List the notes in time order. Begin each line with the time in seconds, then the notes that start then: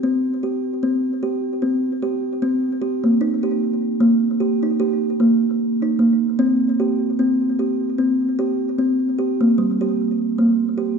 0.03 C4
0.43 G4
0.83 C4
1.23 G4
1.62 C4
2.02 G4
2.42 C4
2.82 G4
3.04 A#3
3.21 D#4
3.43 G4
4.01 A#3
4.40 G4
4.63 D#4
4.80 G4
5.20 A#3
5.82 D#4
5.99 A#3
6.39 C4
6.80 G4
7.19 C4
7.59 G4
7.98 C4
8.39 G4
8.79 C4
9.19 G4
9.41 A#3
9.58 G3
9.81 G4
10.38 A#3
10.78 G4